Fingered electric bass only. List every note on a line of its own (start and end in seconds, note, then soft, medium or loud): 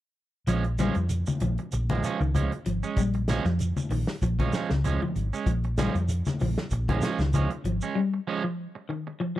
0.47 0.88 A#1 medium
0.96 1.22 F2 medium
1.41 1.56 A#1 medium
1.73 1.99 A#1 medium
2.20 2.47 C#2 medium
2.66 2.80 G#1 medium
2.96 3.37 A#1 medium
3.45 3.72 F2 medium
3.90 4.05 A#1 medium
4.22 4.48 A#1 medium
4.71 4.97 C#2 medium
5.16 5.30 G#1 medium
5.47 5.87 A#1 medium
5.95 6.21 F2 medium
6.41 6.55 A#1 medium
6.71 6.97 A#1 medium
7.19 7.45 C#2 medium
7.64 7.79 G#1 medium